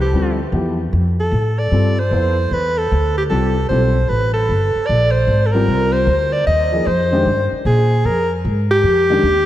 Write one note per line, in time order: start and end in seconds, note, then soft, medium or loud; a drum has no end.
0.00 0.11 C2 medium
0.00 0.37 G4 medium
0.13 0.51 D2 medium
0.13 0.36 G3 medium
0.13 0.36 C4 medium
0.13 0.37 F4 medium
0.13 0.37 A4 medium
0.52 0.91 E2 medium
0.52 0.75 F3 medium
0.52 0.76 B3 soft
0.52 0.76 E4 medium
0.52 0.76 G4 medium
0.93 1.31 F2 medium
1.20 1.60 A4 medium
1.31 1.70 A2 medium
1.59 2.01 D5 medium
1.71 2.10 G2 medium
1.71 1.94 G3 medium
1.71 1.94 C4 medium
1.71 1.95 F4 medium
1.71 1.95 A4 medium
1.99 2.54 C5 medium
2.11 2.49 F2 medium
2.11 2.34 B3 medium
2.11 2.34 E4 medium
2.11 2.35 A4 medium
2.11 2.35 C5 medium
2.51 2.89 E2 medium
2.51 2.79 B4 medium
2.78 3.17 A4 medium
2.92 3.29 D2 medium
3.18 3.24 G4 medium
3.30 3.69 C2 medium
3.30 3.53 G3 medium
3.30 3.53 C4 medium
3.30 3.54 F4 medium
3.30 3.67 A4 medium
3.30 3.54 A4 medium
3.69 4.08 B1 medium
3.69 3.93 G3 medium
3.69 3.93 C4 medium
3.69 3.93 F4 medium
3.69 3.94 A4 medium
3.69 4.10 C5 medium
4.09 4.48 A1 medium
4.09 4.33 B4 medium
4.34 4.88 A4 medium
4.49 4.73 G1 medium
4.75 muted upright bass stroke soft
4.86 5.27 A#1 medium
4.86 5.13 D5 loud
5.11 5.48 C5 medium
5.27 5.66 G#1 medium
5.46 5.53 A4 medium
5.51 6.05 G3 medium
5.51 6.05 C4 medium
5.51 6.05 F4 medium
5.51 5.94 A#4 loud
5.51 6.05 A#4 medium
5.68 6.06 C2 medium
5.92 6.34 C5 loud
6.07 6.45 D2 medium
6.33 6.46 D5 medium
6.47 6.85 D#2 medium
6.47 6.88 D#5 loud
6.72 6.85 F3 medium
6.72 6.85 A#3 medium
6.72 6.86 D#4 medium
6.72 6.86 G#4 medium
6.86 7.25 F2 medium
6.86 7.52 C5 loud
7.12 7.25 D#3 medium
7.12 7.25 G#3 medium
7.12 7.25 D4 medium
7.12 7.25 G4 medium
7.26 7.50 G2 medium
7.52 muted upright bass stroke soft
7.65 8.04 A#2 medium
7.65 8.07 G#4 medium
8.05 8.44 F2 medium
8.05 8.31 A#4 medium
8.45 8.83 G#2 medium
8.71 9.46 G4 loud
8.83 9.23 F2 medium
9.10 9.23 D#3 medium
9.10 9.23 G#3 medium
9.10 9.23 D4 medium
9.10 9.24 G4 medium
9.23 9.46 D#2 medium